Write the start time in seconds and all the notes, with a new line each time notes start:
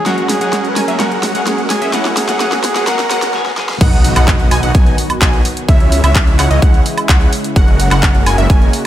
Already playing: C#4 G#4, riser
0.05 F#3 G#3 A#3 C#4 F#4 G#4 A#4 F#5, snare, closed hi-hat
0.18 closed hi-hat
0.29 G#4, snare, open hi-hat
0.40 F#3 G#3 A#3 C#4 F#4 G#4 A#4 F#5, closed hi-hat
0.53 snare, closed hi-hat
0.65 closed hi-hat
0.69 B4
0.76 G#3 C#4 F#4 A#4 G#5, snare, open hi-hat
0.87 F#3 G#3 A#3 C#4 F#4 G#4 A#4 E5, closed hi-hat
0.99 F#3 G#3 A#3 C#4 F#4 G#4 A#4 F#5, snare, closed hi-hat
1.11 closed hi-hat
1.23 snare, open hi-hat
1.34 F#3 G#3 A#3 C#4 F#4 G#4 A#4 F#5, closed hi-hat
1.47 G#4, snare, closed hi-hat
1.58 closed hi-hat
1.64 A#4
1.70 G#3 C#4 F#4 G#4 A#4 G#5, snare, open hi-hat
1.81 F#3 G#3 A#3 C#4 F#4 G#4 A#4 E5, closed hi-hat
1.93 E3 F#3 G#3 A#3 B3 C#4 E4 F#4 G#4 A#4 F#5, snare, closed hi-hat
2.05 snare, closed hi-hat
2.17 G#4, snare, open hi-hat
2.28 F#3 G#3 A#3 C#4 F#4 G#4 A#4 F#5, snare, closed hi-hat
2.40 F#3 G#3 A#3 C#4 F#4 G#4 A#4 F#5, snare, closed hi-hat
2.52 snare, closed hi-hat
2.64 G#4, snare, open hi-hat
2.75 F#3 G#3 A#3 C#4 F#4 G#4 A#4 F#5, snare, closed hi-hat
2.87 F#3 G#3 A#3 C#4 F#4 G#4 A#4 F#5, snare, closed hi-hat, swell
2.99 snare, closed hi-hat
3.10 F#3 G#3 A#3 C#4 F#4 G#4 A#4 F#5, snare, open hi-hat
3.22 snare, closed hi-hat
3.33 F#3 A#3 C#4 G#4, snare
3.46 snare
3.57 F#3 A#3 C#4 G#4, snare
3.69 snare
3.81 B1 D#3 F#3 B3 D#4 F#4 D#5 F#5, kick, closed hi-hat, crash, impact
3.93 closed hi-hat
4.04 open hi-hat
4.16 B1 B3 D#4 F#4 D#5 F#5, clap, closed hi-hat, high woodblock
4.28 kick, clap, closed hi-hat
4.40 closed hi-hat
4.51 B1 B3 D#4 F#4 D#5 G#5, open hi-hat, high woodblock
4.63 B1 B3 D#4 F#4 D#5 F#5, closed hi-hat
4.75 B1 B3 D#4 D#5 G#5, kick, closed hi-hat
4.86 closed hi-hat
4.98 open hi-hat
5.10 closed hi-hat, high woodblock
5.22 B1 B3 D#4 F#4 D#5 G#5, kick, clap, closed hi-hat
5.33 closed hi-hat
5.45 open hi-hat
5.57 closed hi-hat
5.68 C#2 C#3 E3 G#3 C#4 E4 C#5 E5, kick, closed hi-hat
5.80 closed hi-hat
5.92 open hi-hat
6.04 C#2 G#3 C#4 E4 C#5 E5, closed hi-hat, high woodblock
6.15 kick, clap, closed hi-hat
6.27 closed hi-hat
6.39 C#2 G#3 C#4 E4 C#5 F#5, clap, open hi-hat, high woodblock
6.51 C#2 G#3 C#4 E4 C#5 D#5, closed hi-hat
6.62 C#2 G#3 C#4 E4 C#5 F#5, kick, closed hi-hat
6.74 closed hi-hat
6.86 open hi-hat
6.98 closed hi-hat, high woodblock
7.09 C#2 G#3 C#4 E4 C#5 F#5, kick, clap, closed hi-hat
7.21 closed hi-hat
7.33 open hi-hat
7.44 closed hi-hat
7.56 F#1 G#3 A#3 C#4 F#4 A#4 F#5, kick, closed hi-hat
7.68 closed hi-hat
7.80 open hi-hat
7.91 F#1 G#3 C#4 F#4 A#4 F#5, clap, closed hi-hat, high woodblock
8.03 kick, clap, closed hi-hat
8.15 closed hi-hat
8.26 F#1 G#3 C#4 F#4 A#4 G#5, open hi-hat, high woodblock
8.38 F#1 G#3 C#4 F#4 A#4 E5, closed hi-hat
8.50 F#1 G#3 C#4 F#4 A#4 G#5, kick, closed hi-hat
8.62 closed hi-hat
8.73 open hi-hat